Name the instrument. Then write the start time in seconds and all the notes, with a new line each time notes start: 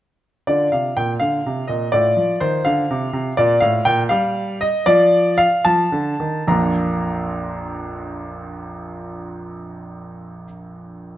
grand piano
0.47 D3 F4 D5
0.72 C3 F5
0.97 A#2 G5
1.20 D3 F5
1.46 C3
1.68 A#2 D#5
1.92 A2 F4 D5
2.17 F3
2.40 D#3 C5
2.65 D3 F5
2.91 C3
3.13 C3
3.37 A#2 F4 D5
3.60 A2 F5
3.85 A#2 G5
4.09 G3 F5
4.61 D#5
4.86 F3 F4 D5
5.38 F5
5.65 F3 A5
5.92 D3
6.20 D#3
6.48 A#1 F2 F3 A#3 D4 F4 A#5